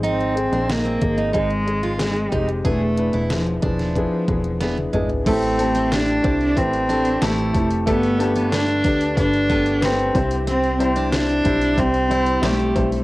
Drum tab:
CC |----------------|----------------|x---------------|----------------|
HH |xxxxxxxxxxxxxxxx|x-xxxxxxx-xxxxxx|oooooooooooooooo|oooooooooooooooo|
SD |----o-------o---|----o--o----o---|----o-------o---|----o-------o---|
T1 |----------------|-------------o--|----------------|----------------|
T2 |----------------|--------------o-|----------------|----------------|
FT |----------------|---------------o|----------------|----------------|
BD |------o-o-----o-|o-----o-o-o-----|o-----o-o-----o-|o-----o-o-o---o-|

CC |----------------|
HH |oooooooooooooooo|
SD |----o-------o---|
T1 |----------------|
T2 |----------------|
FT |----------------|
BD |------o-o-----o-|